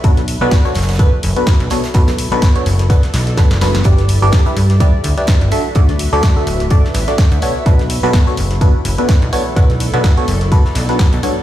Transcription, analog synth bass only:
X:1
M:4/4
L:1/16
Q:"Swing 16ths" 1/4=126
K:Bm
V:1 name="Analog synth bass" clef=bass
B,,,3 B,,, z2 F,,,3 z F,,, z2 B,,, z2 | B,,,3 B,,, z2 F,,,3 z B,,,3 F,,,3 | G,,,3 G,,, z2 G,,3 z D,, z2 G,,, z2 | D,,3 D,, z2 D,,,3 z A,,, z2 D,, z2 |
B,,,3 B,,, z2 F,,,3 z F,,, z2 B,,, z2 | B,,,3 B,,, z2 F,,,3 z B,,,3 B,,, z2 |]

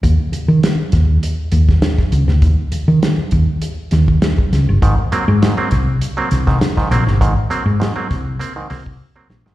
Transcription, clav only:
X:1
M:4/4
L:1/16
Q:1/4=100
K:Ablyd
V:1 name="Clav"
z16 | z16 | [A,,E,] [B,C] [_G,B,C] z [A,,E,] [G,B,C] [B,C] z2 [G,B,C] z [A,,E,] [B,C] [A,,E,] [G,B,C] z | [A,,E,] [B,C] [_G,B,C] z [A,,E,] [G,B,C] [B,C] z [B,C] [A,,E,] [B,C] z2 [G,B,C] z [A,,E,] |]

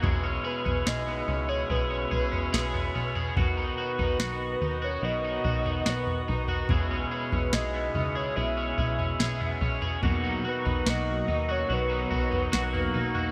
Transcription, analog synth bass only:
X:1
M:4/4
L:1/16
Q:1/4=72
K:B
V:1 name="Analog synth bass" clef=bass
B,,,2 z B,,, B,,,2 C,,2 B,,,2 B,,,2 B,,,2 B,,,2 | B,,,2 z B,,, B,,,2 D,,2 B,,,2 B,,,2 B,,,2 B,,,2 | B,,,2 z B,,, B,,,2 C,,2 B,,,2 B,,,2 B,,,2 B,,,2 | B,,,2 z B,,, B,,,2 D,,2 B,,,2 B,,,2 B,,,2 B,,,2 |]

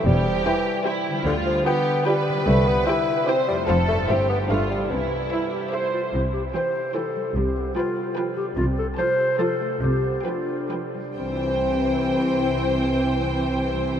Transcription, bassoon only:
X:1
M:3/4
L:1/8
Q:1/4=147
K:C
V:1 name="Bassoon" clef=bass
G,2 E,2 z2 | D, F, B,2 G,2 | A, B, E2 C G, | F, A, C B, A, G, |
E,4 z2 | z6 | z6 | z6 |
z6 | z6 | z6 |]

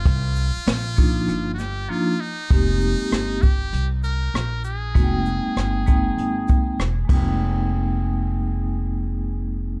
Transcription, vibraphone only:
X:1
M:4/4
L:1/8
Q:"Swing 16ths" 1/4=98
K:Fm
V:1 name="Vibraphone"
z3 [F,B,=DEF] z2 [F,B,DEF] z | [A,B,CEG]3 z4 z | [A,B,CE_G=g]3 [A,B,CEg]3 z [A,B,CEg]- | [A,B,CEg]8 |]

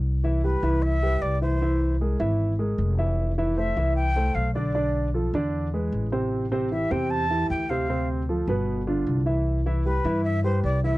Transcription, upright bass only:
X:1
M:4/4
L:1/8
Q:1/4=153
K:C
V:1 name="Upright bass" clef=bass
C,,3 C,,3 C,,2- | C,,3 ^G,,,3 F,,,2- | F,,,3 C,,3 B,,,2- | B,,,3 E,,3 A,,,2- |
A,,,3 E,,3 D,,2- | D,,3 G,,,3 C,,2- | C,,3 G,,3 C,,2 |]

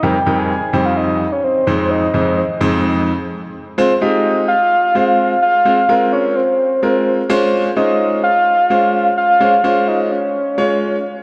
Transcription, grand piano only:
X:1
M:4/4
L:1/16
Q:1/4=128
K:Fm
V:1 name="Grand piano"
[F,,G,CEB] z [F,,G,CEB]2 z2 [F,,G,CEc]4 z4 [F,,A,CEc]2- | [F,,A,CEc]2 [F,,A,CEc]2 z2 [F,,A,CEc]4 z6 | [A,CFc] z [A,CFG]4 z4 [A,CFc]4 z2 | [A,CFc] z [A,CFB]4 z4 [A,CFB]4 [A,DFc]2- |
[A,DFc]2 [A,DFc]4 z4 [A,DFc]4 z2 | [A,DFc] z [A,DFc]4 z4 [A,DFd]4 z2 |]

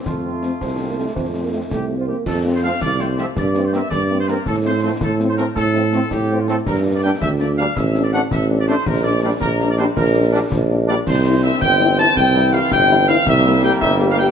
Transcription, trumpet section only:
X:1
M:6/8
L:1/16
Q:3/8=109
K:F
V:1 name="Trumpet section"
F12- | F6 G3 F G2 | A3 c f2 d2 c2 e2 | d3 c e2 d3 c B2 |
A2 c2 c2 A3 c B2 | A6 G3 F A2 | B3 d g2 e2 d2 f2 | e3 d _g2 e3 d c2 |
B2 d2 d2 B3 d c2 | B6 z4 d2 | c4 e2 g4 a2 | g4 f2 g4 f2 |
e4 g2 e3 f g2 |]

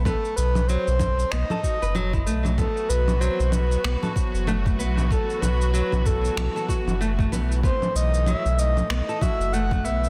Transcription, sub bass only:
X:1
M:4/4
L:1/16
Q:"Swing 16ths" 1/4=95
K:none
V:1 name="Sub bass" clef=bass
z2 B,,,2 z B,,,2 z B,,, z2 ^F,,,3 B,,,2 | z2 B,,,2 z B,,,2 z B,,, z2 ^F,,,3 B,,,2 | z2 B,,,2 z B,,,2 z B,,, z2 ^F,,,3 B,,,2 | z2 B,,,2 z B,,,2 z B,,, z2 ^F,,,3 B,,,2 |]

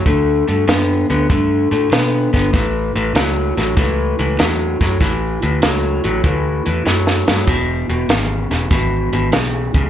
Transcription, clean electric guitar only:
X:1
M:4/4
L:1/8
Q:"Swing" 1/4=97
K:A
V:1 name="Clean electric guitar" clef=bass
[D,A,] [D,A,] [D,B,] [D,B,] [D,A,] [D,A,] [D,B,] [D,B,] | [A,,E,] [A,,E,] [A,,F,] [A,,F,] [A,,E,] [A,,E,] [A,,F,] [A,,F,] | [A,,E,] [A,,E,] [A,,F,] [A,,F,] [A,,E,] [A,,E,] [A,,F,] [A,,F,] | [E,,B,,] [E,,B,,] [E,,C,] [E,,C,] [E,,B,,] [E,,B,,] [E,,C,] [E,,C,] |]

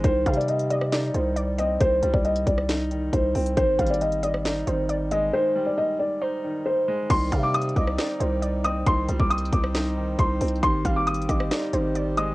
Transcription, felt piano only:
X:1
M:4/4
L:1/16
Q:1/4=136
K:Cm
V:1 name="Felt piano"
c3 d e2 d8 e2 | c3 d e2 d6 c4 | c3 d e2 d8 e2 | c3 d e2 d6 c4 |
c'3 d' e'2 d'8 e'2 | c'3 d' e'2 d'6 c'4 | c'3 d' e'2 d'8 e'2 |]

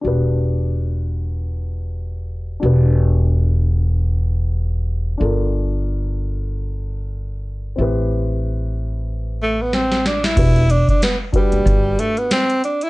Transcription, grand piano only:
X:1
M:4/4
L:1/8
Q:"Swing 16ths" 1/4=93
K:Em
V:1 name="Grand piano"
[DFGB]8 | [DFGB]8 | [D=FA_B]8 | [CEGB]8 |
[DFGB] z2 [DFGB]3 z2 |]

